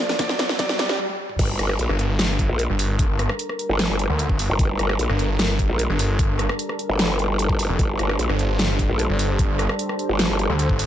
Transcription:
0.00 0.95 G2 medium
0.00 0.95 G3 medium
0.00 0.95 A#3 medium
0.00 0.18 D5 medium
0.00 0.95 A5 medium
0.00 riser medium
0.09 snare medium
0.09 closed hi-hat soft
0.19 0.58 D5 loud
0.19 kick loud
0.19 snare loud
0.19 closed hi-hat medium
0.29 snare medium
0.39 snare loud
0.39 closed hi-hat medium
0.49 snare medium
0.59 0.78 D5 loud
0.59 kick loud
0.59 snare loud
0.59 closed hi-hat medium
0.69 snare loud
0.69 closed hi-hat soft
0.79 0.98 D5 loud
0.79 snare loud
0.79 closed hi-hat medium
0.89 snare loud
0.99 high tom medium
1.09 high tom medium
1.29 mid tom medium
1.39 1.58 G1 loud
1.39 10.86 G3 medium
1.39 10.86 D4 medium
1.39 10.86 A4 medium
1.39 7.77 A#4 medium
1.39 kick loud
1.39 closed hi-hat medium
1.39 crash loud
1.59 1.78 G1 loud
1.59 cross-stick medium
1.59 closed hi-hat medium
1.69 cross-stick medium
1.79 1.88 A#1 loud
1.79 closed hi-hat medium
1.89 2.48 G1 loud
1.89 cross-stick medium
1.99 closed hi-hat medium
2.19 snare loud
2.19 closed hi-hat medium
2.39 kick medium
2.39 closed hi-hat medium
2.49 2.68 A#1 medium
2.59 closed hi-hat medium
2.69 3.28 G1 medium
2.79 open hi-hat loud
2.99 kick loud
2.99 closed hi-hat medium
3.19 cross-stick medium
3.19 closed hi-hat medium
3.29 cross-stick medium
3.39 closed hi-hat medium
3.49 cross-stick medium
3.59 closed hi-hat medium
3.69 3.88 G1 loud
3.79 snare loud
3.79 closed hi-hat medium
3.89 4.08 G1 loud
3.99 closed hi-hat medium
4.09 4.28 D2 loud
4.19 closed hi-hat medium
4.29 4.48 G1 loud
4.29 kick medium
4.39 open hi-hat medium
4.49 4.58 G1 medium
4.59 4.78 G1 loud
4.59 kick loud
4.59 closed hi-hat medium
4.79 4.98 G1 loud
4.79 cross-stick medium
4.79 closed hi-hat medium
4.89 cross-stick medium
4.99 5.08 A#1 loud
4.99 closed hi-hat medium
5.09 5.68 G1 loud
5.09 cross-stick soft
5.19 closed hi-hat medium
5.39 snare loud
5.39 closed hi-hat medium
5.59 kick medium
5.59 closed hi-hat medium
5.69 5.88 A#1 medium
5.79 closed hi-hat medium
5.89 6.48 G1 medium
5.99 open hi-hat medium
6.19 kick loud
6.19 closed hi-hat medium
6.39 cross-stick medium
6.39 closed hi-hat medium
6.49 cross-stick medium
6.59 closed hi-hat medium
6.69 cross-stick medium
6.79 closed hi-hat medium
6.89 7.68 G1 loud
6.99 snare loud
6.99 closed hi-hat medium
7.19 closed hi-hat medium
7.39 closed hi-hat medium
7.49 kick medium
7.59 open hi-hat medium
7.69 7.78 F1 loud
7.79 7.98 G1 loud
7.79 10.86 C5 medium
7.79 kick loud
7.79 closed hi-hat medium
7.99 8.18 G1 loud
7.99 cross-stick medium
7.99 closed hi-hat medium
8.09 cross-stick medium
8.19 8.28 A#1 loud
8.19 closed hi-hat medium
8.29 8.88 G1 loud
8.29 cross-stick medium
8.39 closed hi-hat soft
8.59 snare loud
8.59 closed hi-hat medium
8.79 kick medium
8.79 closed hi-hat soft
8.89 9.08 A#1 loud
8.99 closed hi-hat medium
9.09 9.68 G1 loud
9.19 open hi-hat medium
9.39 kick loud
9.39 closed hi-hat medium
9.59 cross-stick medium
9.59 closed hi-hat medium
9.69 cross-stick medium
9.79 closed hi-hat medium
9.89 cross-stick medium
9.99 closed hi-hat medium
10.09 10.28 G1 medium
10.19 snare loud
10.19 closed hi-hat medium
10.29 10.48 G1 medium
10.39 closed hi-hat soft
10.49 10.68 D2 loud
10.59 closed hi-hat medium
10.69 10.86 G1 loud
10.69 kick medium
10.79 open hi-hat loud

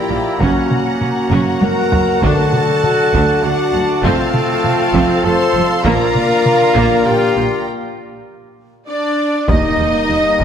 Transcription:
0.00 0.36 F3 medium
0.00 0.40 F3 medium
0.00 2.06 A#3 medium
0.00 2.22 A#3 medium
0.00 0.40 E4 medium
0.00 0.40 F4 medium
0.00 0.40 G4 loud
0.00 2.22 A#4 medium
0.00 0.36 D5 medium
0.00 0.40 D5 medium
0.00 0.40 G5 medium
0.00 2.17 A#5 medium
0.09 0.17 A#1 medium
0.09 0.18 A#2 medium
0.09 0.19 F3 medium
0.39 0.47 F#1 medium
0.39 0.48 F#2 medium
0.39 4.00 F#3 medium
0.39 1.44 C#4 medium
0.39 0.69 C#4 medium
0.39 4.03 F#4 medium
0.39 1.61 F#4 medium
0.39 4.05 F#4 medium
0.39 2.22 C#5 medium
0.39 4.03 F#5 medium
0.39 1.59 F#5 medium
0.39 taiko loud
0.71 taiko mid medium
1.01 taiko mid medium
1.30 1.38 F#1 medium
1.30 1.39 F#2 medium
1.30 1.59 C#4 medium
1.30 taiko mid medium
1.61 1.70 F#1 medium
1.61 1.69 F#2 medium
1.61 1.71 A#3 medium
1.61 2.20 F#4 medium
1.61 2.21 A#4 loud
1.61 2.22 A#5 medium
1.61 taiko high medium
1.92 2.00 F#1 medium
1.92 2.00 F#2 medium
1.92 2.02 F#3 medium
1.92 taiko low medium
2.22 2.30 D2 medium
2.22 2.31 D2 medium
2.22 3.09 D3 loud
2.22 5.82 A3 loud
2.22 4.04 D4 medium
2.22 2.51 D4 loud
2.22 3.40 F#4 loud
2.22 5.86 A4 medium
2.22 3.41 A4 loud
2.22 4.04 D5 medium
2.22 5.81 A5 medium
2.22 3.43 A5 loud
2.22 taiko loud
2.53 taiko mid medium
2.84 taiko mid medium
3.12 3.20 D2 loud
3.12 3.22 D2 loud
3.12 3.41 D4 medium
3.12 taiko medium
3.42 3.50 D2 medium
3.42 3.51 D2 medium
3.42 3.52 A3 medium
3.42 4.03 D4 medium
3.42 4.04 F#4 loud
3.42 4.04 F#5 loud
3.73 3.81 D2 medium
3.73 3.82 D2 medium
3.73 3.82 F#3 medium
4.03 4.11 F1 medium
4.03 4.13 F2 loud
4.03 5.82 F3 loud
4.03 5.85 C4 medium
4.03 5.22 C4 loud
4.03 4.32 C4 loud
4.03 5.25 F4 loud
4.03 7.67 F4 medium
4.03 5.82 A4 loud
4.03 5.81 F5 medium
4.03 5.85 F5 medium
4.03 5.22 F5 loud
4.03 taiko loud
4.34 taiko mid medium
4.64 taiko mid medium
4.93 5.01 F1 loud
4.93 5.02 F2 loud
4.93 5.23 C4 medium
4.93 taiko medium
5.24 5.32 F1 medium
5.24 5.33 F2 medium
5.24 5.33 A3 medium
5.24 5.85 A4 loud
5.24 5.68 C5 loud
5.24 5.84 C6 loud
5.54 5.62 F1 medium
5.54 5.64 F2 medium
5.54 5.64 F3 medium
5.84 5.92 A#1 loud
5.84 5.94 A#2 loud
5.84 7.62 D3 loud
5.84 7.62 A#3 loud
5.84 6.13 A#3 loud
5.84 7.67 A#3 loud
5.84 7.03 F4 loud
5.84 7.67 A#4 loud
5.84 7.67 A#4 medium
5.84 7.04 A#4 loud
5.84 7.67 D5 medium
5.84 7.66 F5 loud
5.84 7.06 A#5 loud
5.84 taiko loud
6.15 taiko mid medium
6.46 taiko mid medium
6.74 6.83 A#1 loud
6.74 6.84 A#2 loud
6.74 7.03 A#3 loud
6.74 taiko medium
7.05 7.14 A#1 medium
7.05 7.15 A#2 medium
7.05 7.14 F3 medium
7.05 7.65 F4 loud
7.05 7.66 G4 loud
7.05 7.66 G5 loud
7.35 7.44 A#1 medium
7.35 7.44 A#2 medium
7.35 7.43 D3 medium
8.87 9.45 D4 loud
8.87 9.45 D4 medium
8.87 9.44 D5 medium
8.87 9.45 D5 medium
9.47 9.56 D#2 medium
9.47 9.57 D#2 medium
9.47 10.44 G3 medium
9.47 10.44 A#3 medium
9.47 10.44 D#4 loud
9.47 10.44 G4 medium
9.47 10.44 A#4 medium
9.47 10.44 D#5 loud
9.47 10.44 D#5 medium
9.47 10.44 D#5 loud
9.47 taiko medium
9.47 impact medium
9.79 9.87 D#2 medium
10.09 10.17 D#2 medium
10.09 10.18 D#2 medium
10.39 10.44 D#2 loud
10.39 10.44 D#2 medium
10.39 taiko medium

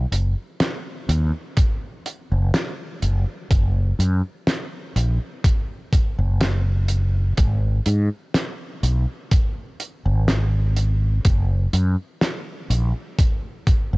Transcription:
0.12 0.34 F#1 medium
0.12 closed hi-hat medium
0.60 snare loud
0.60 closed hi-hat medium
1.09 1.30 D#2 medium
1.09 closed hi-hat medium
1.57 kick loud
1.57 closed hi-hat medium
2.06 closed hi-hat medium
2.32 2.50 F#1 medium
2.54 snare loud
2.54 closed hi-hat medium
3.02 3.24 F#1 medium
3.02 closed hi-hat medium
3.51 3.92 F#1 medium
3.51 kick loud
3.51 closed hi-hat medium
3.99 4.21 F#2 medium
3.99 closed hi-hat medium
4.47 snare loud
4.47 closed hi-hat medium
4.96 5.18 A#1 medium
4.96 closed hi-hat medium
5.44 kick loud
5.44 closed hi-hat medium
5.93 kick loud
5.93 closed hi-hat medium
6.19 7.32 F#1 medium
6.41 snare loud
6.41 closed hi-hat medium
6.88 closed hi-hat medium
7.37 7.79 G#1 medium
7.37 kick loud
7.37 closed hi-hat medium
7.86 8.08 G#2 medium
7.86 closed hi-hat medium
8.34 snare loud
8.34 closed hi-hat medium
8.83 9.05 B1 medium
8.83 closed hi-hat medium
9.31 kick loud
9.31 closed hi-hat medium
9.80 closed hi-hat medium
10.06 11.19 G#1 medium
10.28 snare loud
10.28 closed hi-hat medium
10.77 closed hi-hat medium
11.25 11.66 F#1 medium
11.25 kick loud
11.25 closed hi-hat medium
11.73 11.95 F#2 medium
11.73 closed hi-hat medium
12.21 snare loud
12.21 closed hi-hat medium
12.70 12.92 A#1 medium
12.70 closed hi-hat medium
13.19 kick loud
13.19 closed hi-hat medium
13.67 kick medium
13.67 closed hi-hat medium
13.93 13.98 F#1 loud

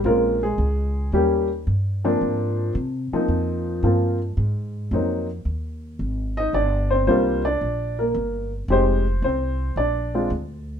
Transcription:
0.04 0.57 A#1 medium
0.04 0.38 G#3 medium
0.04 0.41 A#3 medium
0.04 0.38 C4 medium
0.04 0.38 C#4 medium
0.04 0.39 F4 medium
0.04 0.40 A#4 medium
0.43 1.10 G#3 medium
0.43 1.09 G#4 medium
0.58 1.11 C#2 medium
1.12 1.65 D#2 medium
1.12 1.47 G3 medium
1.12 1.47 A#3 medium
1.12 1.47 C#4 medium
1.12 1.47 G4 medium
1.67 2.19 G2 medium
2.05 2.72 F3 medium
2.05 2.72 A#3 medium
2.05 2.72 C4 medium
2.05 2.72 D4 medium
2.21 2.74 G#2 medium
2.75 3.10 C3 medium
3.12 3.81 F3 medium
3.12 3.80 A#3 medium
3.12 3.81 C4 medium
3.12 3.80 D#4 medium
3.12 muted upright bass stroke soft
3.28 3.81 F2 medium
3.83 4.36 G2 medium
3.83 4.17 F3 medium
3.83 4.17 A#3 medium
3.83 4.18 C4 medium
3.83 4.17 F4 medium
4.37 4.90 G#2 medium
4.91 5.44 F2 medium
4.91 5.26 F#3 medium
4.91 5.26 A#3 medium
4.91 5.26 C4 medium
4.91 5.26 D#4 medium
5.45 5.98 D#2 medium
5.99 6.52 G#1 medium
6.37 6.54 D#4 medium
6.37 6.53 D#5 loud
6.53 7.06 G1 medium
6.53 6.90 D4 medium
6.53 6.92 D5 medium
6.90 7.08 C4 medium
6.90 7.06 C5 medium
7.07 7.60 C2 medium
7.07 7.41 G3 medium
7.07 7.41 A#3 medium
7.07 7.43 C4 medium
7.07 7.41 D4 medium
7.07 7.41 F4 medium
7.07 7.46 C5 medium
7.45 7.96 D4 medium
7.45 8.00 D5 medium
7.61 8.14 A#1 medium
7.99 8.50 A#3 medium
7.99 8.49 A#4 medium
8.14 8.67 G1 medium
8.68 9.21 F1 medium
8.68 9.03 G#3 medium
8.68 9.03 C4 medium
8.68 9.03 D#4 medium
8.68 9.03 G4 medium
8.68 9.23 C5 medium
9.22 9.75 C2 medium
9.22 9.75 C4 medium
9.22 9.79 C5 medium
9.76 10.29 A#1 medium
9.76 10.14 D4 medium
9.76 10.27 D5 medium
10.14 10.29 G#3 medium
10.14 10.29 C4 medium
10.14 10.30 D4 medium
10.14 10.30 F4 medium
10.30 10.80 D2 medium

